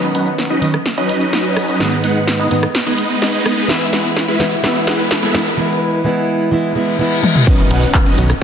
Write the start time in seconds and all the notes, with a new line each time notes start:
Already playing: D#3 F#3 B3 C#4, riser
0.03 closed hi-hat
0.15 F#3 C#4 D#4 B4 F#5, open hi-hat
0.27 closed hi-hat
0.38 snare, closed hi-hat
0.50 F#3 C#4 D#4 B4 D#5
0.61 D#3 F#3 B3 C#4, open hi-hat
0.74 cross-stick, closed hi-hat
0.86 snare, closed hi-hat
0.98 F#3 C#4 D#4 B4 D#5, closed hi-hat
1.09 open hi-hat
1.21 closed hi-hat
1.33 F#3 C#4 D#4 B4 D#5, snare, closed hi-hat
1.45 closed hi-hat
1.57 cross-stick, open hi-hat
1.68 F#3 C#4 D#4 B4 D#5, closed hi-hat
1.79 G#2 D#3 G#3 B3 D#4 B4 D#5, snare, closed hi-hat
1.92 closed hi-hat
2.04 G#3 B3 D#4 B4 F#5, open hi-hat
2.16 closed hi-hat
2.27 snare, closed hi-hat
2.39 G#3 B3 D#4 B4 D#5
2.50 G#2 D#3 G#3 B3 D#4, open hi-hat
2.63 cross-stick, closed hi-hat
2.75 snare, closed hi-hat
2.86 G#3 B3 D#4 B4 D#5, closed hi-hat
2.98 open hi-hat
3.10 closed hi-hat
3.22 G#3 B3 D#4 B4 D#5, snare, closed hi-hat
3.34 closed hi-hat
3.46 cross-stick, open hi-hat
3.57 G#3 B3 D#4 B4 D#5, closed hi-hat
3.68 E3 G#3 B3 E4 B4 E5, snare, closed hi-hat
3.81 closed hi-hat
3.93 G#3 B3 E4 B4 F#5, snare, open hi-hat
4.05 closed hi-hat
4.16 snare, closed hi-hat
4.28 G#3 B3 E4 B4 E5
4.39 E3 G#3 B3 E4, snare, open hi-hat
4.52 closed hi-hat
4.62 E3 G#3 B3 E4 B4 E5, snare, closed hi-hat
4.76 closed hi-hat
4.87 G#3 B3 E4 B4 F#5, snare, open hi-hat
4.99 closed hi-hat
5.11 snare, closed hi-hat
5.23 G#3 B3 E4 B4 E5, closed hi-hat
5.34 E3 G#3 B3 E4, snare, open hi-hat
5.46 closed hi-hat
5.57 E3 G#3 B3 E4
6.04 E3 G#3 B3 E4
6.51 E3 G#3 B3 E4, reverse cymbal
6.75 E3 G#3 B3 E4
6.99 E3 G#3 B3 E4
7.22 E3 G#3 B3 E4, high tom
7.35 mid tom
7.46 D#3 F#3 B3 C#4 D#4 B4 D#5, kick, closed hi-hat, crash, impact, shaker
7.59 closed hi-hat
7.71 B1 F#3 C#4 D#4 B4 F#5, open hi-hat, shaker
7.83 closed hi-hat, shaker
7.94 kick, clap, closed hi-hat, shaker
8.06 F#3 C#4 D#4 B4 D#5, closed hi-hat
8.17 B1 D#3 F#3 B3 C#4, open hi-hat, shaker
8.30 cross-stick, closed hi-hat, shaker